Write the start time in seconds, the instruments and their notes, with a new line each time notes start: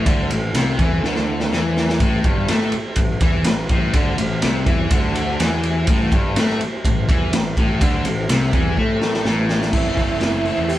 Already playing: tonewheel organ E3 C4 A4 C5
0.06 picked electric bass D2, overdriven electric guitar D3, kick, ride
0.30 picked electric bass A1, overdriven electric guitar A2, ride
0.54 picked electric bass C2, overdriven electric guitar C3, snare, ride
0.79 picked electric bass E2, overdriven electric guitar E3, kick, ride
1.02 picked electric bass D2, overdriven electric guitar D3, snare
1.16 snare
1.40 snare
1.51 picked electric bass E2, overdriven electric guitar E3, snare
1.77 snare
1.89 snare
2.00 picked electric bass A1, overdriven electric guitar A2, tonewheel organ G4, kick, ride
2.24 picked electric bass G1, overdriven electric guitar G2, kick, ride
2.48 picked electric bass A2, overdriven electric guitar A3, snare, ride
2.61 snare
2.72 muted overdriven electric guitar stroke, muted picked electric bass stroke, ride
2.96 picked electric bass A1, overdriven electric guitar A2, kick, ride
3.20 picked electric bass E2, overdriven electric guitar E3, kick, ride
3.44 picked electric bass A1, overdriven electric guitar A2, snare, ride
3.69 picked electric bass A1, overdriven electric guitar A2, kick, ride
3.93 picked electric bass D2, overdriven electric guitar D3, kick, ride
4.18 picked electric bass A1, overdriven electric guitar A2, ride
4.42 picked electric bass C2, overdriven electric guitar C3, snare, ride
4.66 picked electric bass E2, overdriven electric guitar E3, kick, ride
4.90 picked electric bass D2, overdriven electric guitar D3, kick, ride
5.15 ride
5.40 picked electric bass E2, overdriven electric guitar E3, snare, ride
5.63 ride
5.87 picked electric bass A1, overdriven electric guitar A2, kick, ride
6.12 picked electric bass G1, overdriven electric guitar G2, kick, ride
6.36 picked electric bass A2, overdriven electric guitar A3, snare, ride
6.49 snare
6.61 muted picked electric bass stroke, muted overdriven electric guitar stroke, ride
6.85 picked electric bass A1, overdriven electric guitar A2, kick, ride
7.09 picked electric bass E2, overdriven electric guitar E3, kick, ride
7.33 picked electric bass A1, overdriven electric guitar A2, snare, ride
7.57 picked electric bass A1, overdriven electric guitar A2, kick, ride
7.81 picked electric bass D2, overdriven electric guitar D3, kick, ride
8.05 picked electric bass A1, overdriven electric guitar A2, ride
8.29 picked electric bass C2, overdriven electric guitar C3, snare, ride
8.42 snare
8.53 picked electric bass E2, overdriven electric guitar E3, kick, ride
8.77 picked electric bass A2, overdriven electric guitar A3, kick
9.02 snare
9.14 snare
9.25 picked electric bass A1, overdriven electric guitar A2, snare
9.49 snare
9.62 snare
9.72 picked electric bass A1, overdriven electric guitar A2 E3 A3 C4 E4, transistor combo organ E4, tonewheel organ A4 C5 E5 C6, kick, crash
9.86 picked electric bass F#1
9.96 overdriven electric guitar A3 C4 E4, kick, open hi-hat
10.20 picked electric bass F#1, overdriven electric guitar A2 E3 A3 C4 E4, snare, open hi-hat
10.45 overdriven electric guitar A3 C4 E4, open hi-hat
10.58 picked electric bass E2
10.68 overdriven electric guitar E3 A3 C4 E4, transistor combo organ G4, open hi-hat